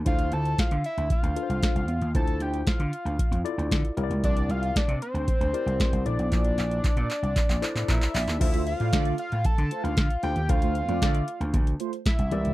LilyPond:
<<
  \new Staff \with { instrumentName = "Analog synth lead" } { \time 4/4 \key d \minor \tempo 4 = 115 f''8 a''8 f''8 e''8 f''2 | a''8 g''8 f''4. r4. | d''8 f''8 d''8 c''2 d''8~ | d''2. e''4 |
e''8 f''4 f''8 a''8. f''8. g''8 | f''2 r4 e''4 | }
  \new Staff \with { instrumentName = "Tine electric piano" } { \time 4/4 \key d \minor << { r1 | r1 | r1 | r2. bes''8 d''8 |
r1 | r1 | } \\ { <e' f' a' c''>4~ <e' f' a' c''>16 r4 r16 <d' f' a' b' c''>4 r8 | <e' f' a' c''>4~ <e' f' a' c''>16 r4 r16 <e' f' a' d''>4 <e' g' bes' cis'' d''>8~ | <e' g' bes' cis'' d''>4 r4. <e' g' bes' d''>4 <e' a' c'' d''>8~ | <e' a' c'' d''>4 r4. <e' a' c'' d''>4 r8 |
<f' a' c'' f''>4~ <f' a' c'' f''>16 r2 r16 <f' a' c'' f''>8 | <f' a' c'' g''>4~ <f' a' c'' g''>16 r2 r16 <e g' bes' d''>8 | } >> }
  \new Staff \with { instrumentName = "Analog polysynth" } { \time 4/4 \key d \minor r1 | r1 | r1 | r1 |
r16 <a f' c''>16 r16 <a f' d''>16 <a f' d''>8 r4 <a f' c''>16 r4 r16 | r16 <a f' c''>16 r16 <a f' d''>16 <a f' d''>8 r4 <a f' c''>16 r4 r16 | }
  \new Staff \with { instrumentName = "Slap bass" } { \clef bass \time 4/4 \key d \minor d,8 d,8 r16 d16 r16 d,16 r16 d,16 r16 c,16 r16 c,16 e,16 ees,16 | d,8 d,8 r16 d16 r16 d,16 r16 f,16 r16 d,16 d16 r16 c,16 cis,16 | c,8 c,8 r16 c16 r16 d,16 r16 d,16 r16 c,16 r16 c,16 bes,,16 b,,16 | bes,,8 bes,,8 r16 bes,16 r16 c,16 r16 bes,,16 r16 a,16 bes,16 r16 bes,,16 ees,16 |
d,8. a,16 d8 r16 a,16 r16 d16 r16 d,16 d16 r16 d,16 ees,16 | d,8. f,16 d8 r16 d,16 d,8 r8. c,16 c,16 cis,16 | }
  \new DrumStaff \with { instrumentName = "Drums" } \drummode { \time 4/4 <hh bd>16 hh16 hh16 hh16 <hh bd sn>16 hh16 hh16 hh16 <hh bd>16 hh16 hh16 hh16 <hh bd sn>16 hh16 hh16 hh16 | <hh bd>16 hh16 hh16 hh16 <hh bd sn>16 hh16 hh16 hh16 <hh bd>16 hh16 hh16 hh16 <hh bd sn>16 hh16 hh16 hh16 | <hh bd>16 hh16 hh16 hh16 <hh bd sn>16 hh16 hh16 hh16 <hh bd>16 hh16 hh16 hh16 <hh bd sn>16 hh16 hh16 hh16 | <hc hh bd>16 hh16 <hc hh>16 hh16 <hc hh bd>16 hh16 <hc hh>16 hh16 <hc hh bd>16 <hc hh>16 <hc hh>16 <hc hh>16 <hc hh bd>16 <hc hh>16 <hc hho>16 <hc hh>16 |
<cymc hh bd>16 hh16 hh16 hh16 <hh bd sn>16 hh16 hh16 hh16 <hh bd>16 hh16 hh16 hh16 <hh bd sn>16 hh16 hh16 hh16 | <hh bd>16 hh16 hh16 hh16 <hh bd sn>16 hh16 hh16 hh16 <hh bd>16 hh16 hh16 hh16 <hh bd sn>16 hh16 hh16 hh16 | }
>>